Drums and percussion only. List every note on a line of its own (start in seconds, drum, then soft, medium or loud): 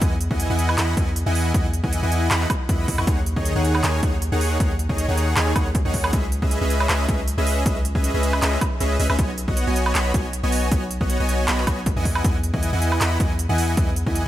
0.01 kick loud
0.01 closed hi-hat medium
0.21 closed hi-hat medium
0.31 kick medium
0.40 closed hi-hat medium
0.59 closed hi-hat medium
0.69 high woodblock medium
0.78 clap loud
0.78 closed hi-hat medium
0.97 kick loud
0.97 closed hi-hat medium
1.16 closed hi-hat medium
1.35 open hi-hat medium
1.54 kick loud
1.54 closed hi-hat medium
1.74 closed hi-hat medium
1.84 kick medium
1.93 closed hi-hat medium
2.12 closed hi-hat medium
2.31 clap loud
2.31 closed hi-hat medium
2.41 clap soft
2.50 kick loud
2.50 closed hi-hat medium
2.50 high woodblock medium
2.69 kick loud
2.69 closed hi-hat medium
2.88 kick medium
2.88 open hi-hat medium
2.98 high woodblock medium
3.07 kick loud
3.07 closed hi-hat medium
3.26 closed hi-hat medium
3.36 kick medium
3.45 closed hi-hat medium
3.65 closed hi-hat medium
3.75 high woodblock medium
3.84 clap loud
3.84 closed hi-hat medium
4.03 kick loud
4.03 closed hi-hat medium
4.22 closed hi-hat medium
4.41 open hi-hat medium
4.60 kick loud
4.60 closed hi-hat medium
4.79 closed hi-hat medium
4.89 kick medium
4.98 closed hi-hat medium
5.17 closed hi-hat medium
5.37 clap loud
5.37 closed hi-hat medium
5.47 clap soft
5.56 kick loud
5.56 closed hi-hat medium
5.56 high woodblock medium
5.75 kick loud
5.75 closed hi-hat medium
5.94 kick medium
5.94 open hi-hat loud
6.04 high woodblock medium
6.13 kick loud
6.13 closed hi-hat medium
6.32 closed hi-hat medium
6.42 kick medium
6.51 closed hi-hat medium
6.70 closed hi-hat medium
6.80 high woodblock medium
6.89 clap loud
6.89 closed hi-hat medium
7.08 kick loud
7.08 closed hi-hat medium
7.28 closed hi-hat medium
7.47 open hi-hat loud
7.66 kick loud
7.66 closed hi-hat medium
7.85 closed hi-hat medium
7.95 kick medium
8.04 closed hi-hat medium
8.23 closed hi-hat medium
8.33 high woodblock medium
8.42 clap loud
8.42 closed hi-hat medium
8.52 clap soft
8.61 kick loud
8.61 closed hi-hat medium
8.61 high woodblock medium
8.80 closed hi-hat medium
9.00 open hi-hat loud
9.10 high woodblock medium
9.19 kick loud
9.19 closed hi-hat medium
9.38 closed hi-hat medium
9.48 kick medium
9.57 closed hi-hat medium
9.76 closed hi-hat medium
9.86 high woodblock medium
9.95 clap loud
9.95 closed hi-hat medium
10.14 kick loud
10.14 closed hi-hat medium
10.33 closed hi-hat medium
10.52 open hi-hat medium
10.71 kick loud
10.71 closed hi-hat medium
10.91 closed hi-hat medium
11.01 kick medium
11.10 closed hi-hat medium
11.29 closed hi-hat medium
11.48 clap loud
11.48 closed hi-hat medium
11.58 clap soft
11.67 kick loud
11.67 closed hi-hat medium
11.67 high woodblock medium
11.86 kick loud
11.86 closed hi-hat medium
12.05 kick medium
12.05 open hi-hat loud
12.15 high woodblock medium
12.24 kick loud
12.24 closed hi-hat medium
12.44 closed hi-hat medium
12.54 kick medium
12.63 closed hi-hat medium
12.82 closed hi-hat medium
12.92 high woodblock medium
13.01 clap loud
13.01 closed hi-hat medium
13.20 kick loud
13.20 closed hi-hat medium
13.39 closed hi-hat medium
13.58 open hi-hat medium
13.77 kick loud
13.77 closed hi-hat medium
13.96 closed hi-hat medium
14.07 kick medium
14.15 closed hi-hat medium